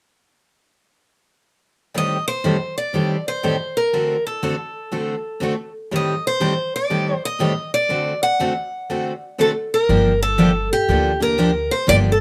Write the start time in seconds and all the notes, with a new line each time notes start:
1.94 A2 D#3 G3 C4 G4 A4 D#5
2.28 C5
2.44 A2 D#3 G3 C4 G4 A4
2.78 D5
2.93 A2 D#3 G3 C4 G4 A4
3.28 C5
3.44 A2 D#3 G3 C4 G4 A4
3.77 A#4
3.93 D3 A3 C4 F#4 A4
4.27 A4
4.43 D3 A3 C4 F#4 A4
4.91 D3 A3 C4 F#4 A4
5.40 D3 A3 C4 F#4 A4
5.92 A2 D#3 G3 C4 G4 A4 D#5
6.27 C5
6.40 A2 D#3 G3 C4 G4 A4
6.76 D5
6.90 A2 D#3 G3 C4 G4 A4
7.25 D#5
7.39 A2 D#3 G3 C4 G4 A4
7.74 D5
7.89 D3 A3 C4 F#4 A4
8.23 F#5
8.40 D3 A3 C4 F#4 A4
8.90 D3 A3 C4 F#4 A4
9.38 D3 A3 C4 F#4 A4
9.74 A#4
9.89 G1 D3 F3 A#3 D4 G4
10.23 A4
10.38 D3 F3 A#3 D4 G4
10.73 G4
10.89 D2 D3 F3 A#3 D4 G4
11.20 A#3 D4 G4 A#4
11.38 D3 F3 A#3 D4 G4
11.71 C5
11.87 G1 D3 F3 A#3 D4 G4 D5
12.12 A4